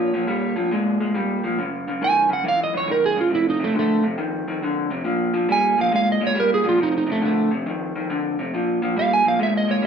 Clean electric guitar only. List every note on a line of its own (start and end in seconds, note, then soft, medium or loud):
0.00 0.10 A#2 medium
0.00 0.11 F3 medium
0.14 0.26 A#2 medium
0.14 0.27 F3 medium
0.27 0.53 A#2 medium
0.27 0.54 G3 medium
0.56 0.69 A#2 medium
0.56 0.70 F3 medium
0.72 0.97 A#2 medium
0.72 0.98 G#3 medium
1.00 1.13 A#2 medium
1.00 1.13 G#3 medium
1.14 1.40 A#2 medium
1.14 1.41 G3 medium
1.44 1.57 A#2 medium
1.44 1.57 F3 medium
1.58 1.84 F#2 medium
1.58 1.84 C#3 medium
1.88 2.00 F#2 medium
1.88 2.01 C#3 medium
2.01 2.27 F#2 medium
2.01 2.27 D#3 medium
2.29 2.43 F#2 medium
2.29 2.43 C#3 medium
2.44 2.70 F#2 medium
2.44 2.71 E3 loud
2.74 2.86 F#2 medium
2.74 2.87 E3 medium
2.88 3.14 F#2 medium
2.88 3.14 D#3 medium
3.16 3.29 F#2 medium
3.16 3.30 C#3 medium
3.30 3.57 F2 medium
3.30 3.57 C3 medium
3.60 3.73 F2 medium
3.60 3.73 C3 medium
3.74 4.00 F2 medium
3.74 4.01 D3 loud
4.03 4.16 F2 medium
4.03 4.17 C3 medium
4.18 4.44 F2 medium
4.18 4.44 D#3 loud
4.48 4.61 F2 medium
4.48 4.61 D#3 medium
4.62 4.88 F2 medium
4.62 4.88 D3 medium
4.90 5.04 F2 medium
4.90 5.04 C3 medium
5.04 5.30 A#2 medium
5.04 5.31 F3 medium
5.33 5.47 A#2 medium
5.33 5.47 F3 medium
5.49 5.74 A#2 medium
5.49 5.75 G3 loud
5.78 5.90 A#2 medium
5.78 5.91 F3 medium
5.91 6.17 A#2 medium
5.91 6.18 G#3 medium
6.21 6.34 A#2 medium
6.21 6.34 G#3 medium
6.35 6.61 A#2 medium
6.35 6.61 G3 medium
6.64 6.77 A#2 medium
6.64 6.78 F3 medium
6.78 7.04 F2 medium
6.78 7.04 C3 medium
7.07 7.20 F2 medium
7.07 7.20 C3 medium
7.22 7.48 F2 loud
7.22 7.48 D3 loud
7.51 7.64 F2 medium
7.51 7.64 C3 medium
7.66 7.92 F2 medium
7.66 7.92 D#3 medium
7.95 8.08 F2 medium
7.95 8.08 D#3 medium
8.10 8.35 F2 medium
8.10 8.35 D3 loud
8.39 8.52 F2 medium
8.39 8.52 C3 medium
8.54 8.79 A#2 medium
8.54 8.79 F3 medium
8.82 8.95 A#2 medium
8.82 8.95 F3 medium
8.96 9.22 A#2 medium
8.96 9.22 G3 medium
9.24 9.38 A#2 medium
9.24 9.38 F3 medium
9.39 9.65 A#2 medium
9.39 9.65 G#3 medium
9.68 9.81 A#2 medium
9.68 9.81 G#3 medium
9.82 9.87 A#2 medium
9.82 9.87 G3 medium